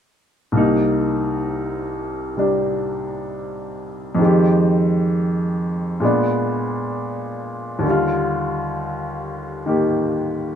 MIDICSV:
0, 0, Header, 1, 2, 480
1, 0, Start_track
1, 0, Key_signature, -3, "minor"
1, 0, Tempo, 911577
1, 288, Time_signature, 4, 2, 24, 8
1, 5557, End_track
2, 0, Start_track
2, 0, Title_t, "Upright piano"
2, 0, Program_c, 0, 0
2, 275, Note_on_c, 0, 36, 49
2, 283, Note_on_c, 0, 48, 45
2, 291, Note_on_c, 0, 58, 44
2, 301, Note_on_c, 0, 63, 48
2, 388, Control_c, 0, 64, 127
2, 1239, Note_off_c, 0, 48, 0
2, 1246, Note_on_c, 0, 48, 37
2, 1251, Note_on_c, 0, 55, 34
2, 1259, Note_on_c, 0, 62, 42
2, 2183, Note_on_c, 0, 41, 55
2, 2202, Note_off_c, 0, 36, 0
2, 2203, Note_on_c, 0, 51, 48
2, 2207, Note_off_c, 0, 48, 0
2, 2210, Note_off_c, 0, 55, 0
2, 2210, Note_off_c, 0, 58, 0
2, 2214, Note_off_c, 0, 62, 0
2, 2215, Note_off_c, 0, 63, 0
2, 2216, Control_c, 0, 64, 0
2, 2220, Note_on_c, 0, 56, 42
2, 2239, Note_on_c, 0, 67, 53
2, 2324, Control_c, 0, 64, 127
2, 3156, Note_off_c, 0, 41, 0
2, 3160, Note_off_c, 0, 56, 0
2, 3160, Note_on_c, 0, 46, 49
2, 3166, Note_off_c, 0, 51, 0
2, 3168, Note_on_c, 0, 56, 45
2, 3174, Control_c, 0, 64, 0
2, 3176, Note_on_c, 0, 59, 45
2, 3184, Note_off_c, 0, 67, 0
2, 3185, Note_on_c, 0, 62, 51
2, 3267, Control_c, 0, 64, 127
2, 4101, Note_on_c, 0, 39, 52
2, 4122, Note_on_c, 0, 50, 49
2, 4125, Note_off_c, 0, 46, 0
2, 4129, Note_off_c, 0, 56, 0
2, 4133, Note_off_c, 0, 59, 0
2, 4137, Note_off_c, 0, 62, 0
2, 4137, Control_c, 0, 64, 0
2, 4142, Note_on_c, 0, 55, 45
2, 4162, Note_on_c, 0, 65, 55
2, 4240, Control_c, 0, 64, 127
2, 5086, Note_on_c, 0, 51, 40
2, 5093, Note_on_c, 0, 58, 34
2, 5101, Note_on_c, 0, 67, 38
2, 5557, Note_off_c, 0, 39, 0
2, 5557, Note_off_c, 0, 50, 0
2, 5557, Note_off_c, 0, 51, 0
2, 5557, Note_off_c, 0, 55, 0
2, 5557, Note_off_c, 0, 58, 0
2, 5557, Note_off_c, 0, 65, 0
2, 5557, Note_off_c, 0, 67, 0
2, 5557, End_track
0, 0, End_of_file